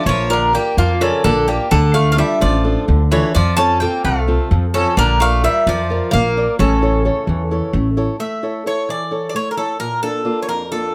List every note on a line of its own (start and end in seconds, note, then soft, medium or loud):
0.06 0.56 A#1 loud
0.06 0.30 F3 medium
0.06 0.52 A#3 medium
0.06 0.31 C#5 medium
0.30 0.54 D3 medium
0.30 0.52 F4 soft
0.30 0.52 A#4 medium
0.30 0.53 A#4 soft
0.30 0.53 D5 soft
0.53 0.76 A#3 medium
0.53 0.91 F4 soft
0.53 0.78 G4 medium
0.53 0.91 A#4 medium
0.53 0.92 D5 medium
0.77 1.10 F2 medium
0.77 1.23 F3 medium
0.77 1.00 A#3 medium
0.77 1.02 F4 medium
1.01 1.23 C#3 medium
1.01 1.38 F4 soft
1.01 1.23 A4 medium
1.01 1.39 A#4 soft
1.01 1.39 D5 medium
1.24 1.57 A#1 medium
1.24 1.46 D3 medium
1.24 1.70 A#3 medium
1.24 1.46 A4 medium
1.48 1.70 A#3 medium
1.48 1.67 F4 soft
1.48 1.72 G4 medium
1.48 1.67 A#4 soft
1.48 1.67 D5 medium
1.71 2.21 D2 loud
1.71 2.17 D3 medium
1.71 1.93 D3 medium
1.71 1.93 A4 medium
1.93 2.11 A3 medium
1.93 2.16 D4 soft
1.93 2.16 F4 soft
1.93 2.16 A4 soft
1.93 2.11 F5 medium
2.12 2.18 A3 medium
2.12 2.18 F5 medium
2.17 2.40 G3 medium
2.17 2.55 D4 soft
2.17 2.55 F4 soft
2.17 2.55 A4 medium
2.17 2.40 E5 medium
2.40 2.75 A1 medium
2.40 2.85 F3 medium
2.40 2.86 A3 medium
2.40 2.85 D5 medium
2.64 3.02 D4 soft
2.64 3.02 F4 soft
2.64 3.02 A4 soft
2.88 3.21 D2 medium
2.88 3.33 D3 medium
3.11 3.33 E3 medium
3.11 3.30 D4 soft
3.11 3.30 F4 soft
3.11 3.31 A4 medium
3.11 3.34 C#5 medium
3.35 3.84 F2 medium
3.35 3.80 F3 medium
3.35 3.57 F3 medium
3.35 3.56 D5 medium
3.57 3.81 C4 soft
3.57 3.79 C#4 medium
3.57 3.81 F4 soft
3.57 3.81 A4 soft
3.57 3.79 A5 loud
3.80 4.03 A#3 medium
3.80 4.19 C4 medium
3.80 4.19 F4 soft
3.80 4.19 A4 medium
3.80 4.02 G5 medium
4.04 4.37 C2 medium
4.04 4.50 C3 medium
4.04 4.48 A3 medium
4.04 4.48 F5 medium
4.28 4.65 C4 soft
4.28 4.65 F4 soft
4.28 4.65 A4 soft
4.51 4.83 F2 medium
4.51 4.96 F3 medium
4.74 4.96 C#3 medium
4.74 4.92 C4 medium
4.74 4.93 F4 soft
4.74 4.98 A4 medium
4.74 4.93 A4 medium
4.97 5.46 A#1 loud
4.97 5.19 D3 medium
4.97 5.42 A#3 medium
4.97 5.22 A#4 loud
5.20 5.42 A3 medium
5.20 5.42 F4 soft
5.20 5.43 A#4 soft
5.20 5.43 D5 soft
5.20 5.43 F5 loud
5.43 5.65 G3 medium
5.43 5.80 F4 soft
5.43 5.81 A#4 medium
5.43 5.81 D5 medium
5.43 5.65 E5 medium
5.67 5.99 F2 medium
5.67 6.10 F3 medium
5.67 6.12 F3 medium
5.67 6.11 D5 medium
5.90 6.27 F4 soft
5.90 6.27 A#4 soft
5.90 6.28 D5 soft
6.11 6.45 A#1 medium
6.11 6.55 A#3 medium
6.11 6.58 A#3 medium
6.11 6.56 F5 medium
6.37 6.55 F4 soft
6.37 6.55 A#4 soft
6.37 6.55 D5 soft
6.59 7.07 A1 loud
6.59 7.70 C#3 medium
6.59 7.04 A3 medium
6.59 7.70 A4 medium
6.82 7.04 E4 soft
6.82 7.04 A4 soft
6.82 7.05 C#5 soft
7.05 7.42 E4 soft
7.05 7.42 A4 soft
7.05 7.42 C#5 medium
7.27 7.60 E2 medium
7.27 7.73 E3 medium
7.51 7.88 E4 soft
7.51 7.88 A4 soft
7.51 7.89 C#5 soft
7.73 8.06 A1 medium
7.73 8.19 A3 medium
7.97 8.15 E4 medium
7.97 8.15 A4 soft
7.97 8.16 C#5 soft
8.20 8.64 A3 medium
8.20 8.63 E5 medium
8.43 8.65 E4 soft
8.43 8.65 A4 soft
8.43 8.65 C#5 soft
8.66 9.03 E4 soft
8.66 9.03 A4 soft
8.66 9.03 C#5 soft
8.66 8.88 C#5 medium
8.89 9.33 E3 medium
8.89 9.27 D5 medium
9.11 9.48 E4 soft
9.11 9.48 A4 soft
9.11 9.48 C#5 soft
9.29 9.35 D5 medium
9.35 9.79 A3 medium
9.35 9.51 C#5 medium
9.51 9.57 A#4 medium
9.57 9.76 E4 soft
9.57 9.79 A4 medium
9.57 9.76 A4 soft
9.57 9.76 C#5 soft
9.80 10.24 A#2 medium
9.80 10.02 A#4 medium
10.03 10.24 A#3 soft
10.03 10.24 D4 soft
10.03 10.24 F4 soft
10.03 10.40 A4 medium
10.25 10.62 A#3 soft
10.25 10.62 D4 soft
10.25 10.62 F4 soft
10.43 10.48 C#5 medium
10.48 10.93 F2 medium
10.48 10.71 A#4 medium
10.71 10.95 A#3 soft
10.71 10.95 D4 soft
10.71 10.95 F4 soft
10.71 10.93 A4 medium